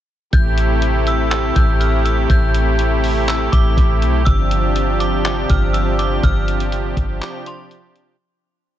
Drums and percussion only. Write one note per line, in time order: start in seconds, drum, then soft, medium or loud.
0.33 kick loud
0.33 closed hi-hat medium
0.58 closed hi-hat medium
0.82 closed hi-hat medium
1.07 closed hi-hat medium
1.31 clap loud
1.31 closed hi-hat medium
1.56 kick medium
1.56 closed hi-hat medium
1.81 closed hi-hat medium
2.06 closed hi-hat medium
2.30 kick loud
2.30 closed hi-hat medium
2.54 closed hi-hat medium
2.79 closed hi-hat medium
3.04 open hi-hat medium
3.28 clap loud
3.28 closed hi-hat medium
3.53 kick medium
3.53 closed hi-hat medium
3.77 kick medium
3.77 closed hi-hat medium
4.02 closed hi-hat medium
4.26 kick loud
4.26 closed hi-hat medium
4.51 closed hi-hat medium
4.76 closed hi-hat medium
5.00 closed hi-hat medium
5.25 clap loud
5.25 closed hi-hat medium
5.50 kick medium
5.50 closed hi-hat medium
5.74 closed hi-hat medium
5.99 closed hi-hat medium
6.23 kick loud
6.23 closed hi-hat medium
6.48 closed hi-hat medium
6.60 closed hi-hat medium
6.72 closed hi-hat medium
6.97 kick loud
6.97 closed hi-hat medium
7.22 clap loud
7.22 closed hi-hat medium
7.46 closed hi-hat medium
7.71 closed hi-hat medium
7.96 closed hi-hat medium